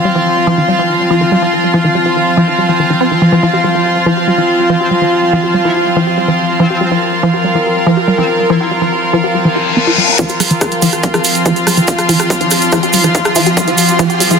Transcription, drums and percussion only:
10.19 kick loud
10.19 closed hi-hat medium
10.19 cabasa soft
10.29 closed hi-hat soft
10.29 cabasa soft
10.40 cross-stick soft
10.40 open hi-hat loud
10.40 cabasa medium
10.50 closed hi-hat medium
10.50 cabasa soft
10.61 kick loud
10.61 cross-stick medium
10.61 closed hi-hat medium
10.61 cabasa medium
10.72 closed hi-hat soft
10.72 cabasa soft
10.82 open hi-hat loud
10.82 cabasa loud
10.93 cross-stick soft
10.93 closed hi-hat medium
10.93 cabasa soft
11.03 kick loud
11.03 closed hi-hat medium
11.03 cabasa soft
11.14 cross-stick medium
11.14 closed hi-hat soft
11.14 cabasa soft
11.24 open hi-hat loud
11.24 cabasa medium
11.35 closed hi-hat medium
11.35 cabasa soft
11.46 kick loud
11.46 cross-stick soft
11.46 closed hi-hat medium
11.46 cabasa soft
11.56 closed hi-hat soft
11.56 cabasa soft
11.67 cross-stick medium
11.67 open hi-hat loud
11.67 cabasa medium
11.77 closed hi-hat medium
11.77 cabasa soft
11.87 kick loud
11.87 closed hi-hat medium
11.87 cabasa medium
11.99 cross-stick soft
11.99 closed hi-hat soft
11.99 cabasa soft
12.09 open hi-hat loud
12.09 cabasa medium
12.19 cross-stick medium
12.19 closed hi-hat medium
12.19 cabasa soft
12.30 kick loud
12.30 closed hi-hat medium
12.30 cabasa soft
12.41 closed hi-hat soft
12.41 cabasa soft
12.51 cross-stick soft
12.51 open hi-hat loud
12.51 cabasa medium
12.61 closed hi-hat medium
12.61 cabasa soft
12.72 kick loud
12.72 cross-stick medium
12.72 closed hi-hat medium
12.72 cabasa medium
12.83 closed hi-hat soft
12.83 cabasa soft
12.93 open hi-hat loud
12.93 cabasa medium
13.04 cross-stick soft
13.04 closed hi-hat medium
13.04 cabasa soft
13.15 kick loud
13.15 closed hi-hat medium
13.15 cabasa medium
13.25 cross-stick medium
13.25 closed hi-hat soft
13.25 cabasa soft
13.35 open hi-hat loud
13.35 cabasa loud
13.46 closed hi-hat medium
13.46 cabasa soft
13.57 kick loud
13.57 closed hi-hat medium
13.57 cabasa medium
13.67 closed hi-hat soft
13.67 cabasa soft
13.78 open hi-hat loud
13.78 cabasa loud
13.89 closed hi-hat medium
13.89 cabasa soft
13.99 kick loud
13.99 closed hi-hat soft
13.99 cabasa medium
14.10 closed hi-hat soft
14.10 cabasa soft
14.20 open hi-hat loud
14.20 cabasa loud
14.31 closed hi-hat medium
14.31 cabasa soft

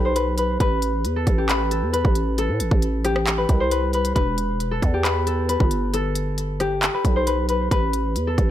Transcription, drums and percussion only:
0.16 closed hi-hat medium
0.38 closed hi-hat medium
0.60 kick loud
0.60 closed hi-hat medium
0.82 closed hi-hat medium
1.05 closed hi-hat medium
1.27 kick loud
1.27 closed hi-hat medium
1.49 clap loud
1.49 closed hi-hat medium
1.71 closed hi-hat medium
1.94 closed hi-hat medium
2.05 kick loud
2.15 closed hi-hat medium
2.38 closed hi-hat medium
2.60 closed hi-hat medium
2.71 kick medium
2.82 closed hi-hat medium
3.05 cross-stick medium
3.05 closed hi-hat medium
3.16 cross-stick loud
3.27 clap loud
3.27 closed hi-hat medium
3.49 kick loud
3.49 closed hi-hat medium
3.71 closed hi-hat medium
3.93 closed hi-hat soft
3.93 open hi-hat medium
4.05 closed hi-hat medium
4.16 kick loud
4.16 closed hi-hat medium
4.38 closed hi-hat medium
4.60 closed hi-hat medium
4.82 kick loud
4.82 closed hi-hat medium
5.05 clap loud
5.05 closed hi-hat medium
5.27 closed hi-hat medium
5.49 closed hi-hat medium
5.60 kick loud
5.71 closed hi-hat medium
5.94 closed hi-hat medium
6.15 closed hi-hat medium
6.38 closed hi-hat medium
6.60 cross-stick medium
6.60 closed hi-hat medium
6.82 clap loud
6.82 closed hi-hat medium
7.05 kick loud
7.05 closed hi-hat medium
7.27 closed hi-hat medium
7.49 closed hi-hat medium
7.71 kick loud
7.71 closed hi-hat medium
7.93 closed hi-hat medium
8.16 closed hi-hat medium
8.38 kick loud
8.38 closed hi-hat medium

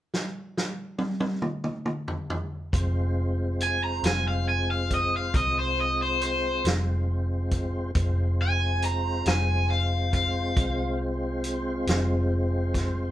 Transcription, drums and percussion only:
0.14 snare medium
0.57 snare medium
0.98 high tom medium
1.20 high tom medium
1.42 mid tom medium
1.64 mid tom medium
1.86 mid tom medium
2.08 floor tom medium
2.30 floor tom medium
2.73 kick medium
2.73 closed hi-hat medium
3.60 closed hi-hat medium
4.04 snare medium
4.04 closed hi-hat medium
4.91 kick medium
4.91 closed hi-hat medium
5.34 kick medium
5.34 closed hi-hat medium
6.21 closed hi-hat soft
6.65 snare medium
6.65 closed hi-hat medium
7.51 kick medium
7.51 closed hi-hat medium
7.95 kick medium
7.95 closed hi-hat medium
8.82 closed hi-hat soft
9.26 snare medium
9.26 closed hi-hat medium
10.13 kick medium
10.13 closed hi-hat soft
10.57 kick medium
10.57 closed hi-hat medium
11.44 closed hi-hat medium
11.87 snare medium
11.87 closed hi-hat medium
12.74 kick medium
12.74 snare soft
12.74 closed hi-hat medium

